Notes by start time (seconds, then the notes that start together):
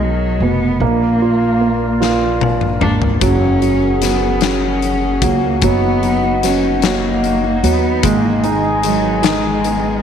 Already playing: B1 B2 D#4 G#4 A#4 D#5
0.03 F#3
0.40 F1 B2 B3
0.80 A#1 A#3 D4 F4 A#4 D5 F5
1.22 F4
1.61 A#3
2.00 F4, snare
2.41 high tom
2.61 mid tom
2.81 G#1 A#3 D4, mid tom
3.02 floor tom
3.21 F#1 F#3 C#4 F#4 G#4 A#4 F#5, kick, closed hi-hat
3.41 A#3
3.62 F#3 C#4, closed hi-hat
3.82 G#4
4.01 F#3 B3, snare, closed hi-hat
4.22 C#4
4.41 F#3 C#4, snare, closed hi-hat
4.63 A#3
4.82 C#4, closed hi-hat
5.03 G#4
5.22 C#2 F#3 A#3, kick, closed hi-hat
5.43 C#4
5.62 F#1 F#3 B3 D#4 D#5, kick, closed hi-hat
5.84 B3
6.03 F#3 D#4, closed hi-hat
6.24 F#4
6.43 F#3 B3 C#4, snare, closed hi-hat
6.63 D#4
6.82 F#3 A#3, snare, closed hi-hat
7.24 D#4, closed hi-hat
7.44 F#4
7.63 D#2 F#3 B3, closed hi-hat
7.83 D#4
8.03 G#1 D#3 G#3 A#3 G#4 G#5, kick, closed hi-hat
8.24 D#3
8.44 G#3 B3 D#4, closed hi-hat
8.64 D#4
8.83 D#3 F#3 G#3, closed hi-hat
9.04 B3
9.22 D#3 G#3 D#4, snare, closed hi-hat
9.44 D#3
9.64 B3, closed hi-hat
9.84 D#4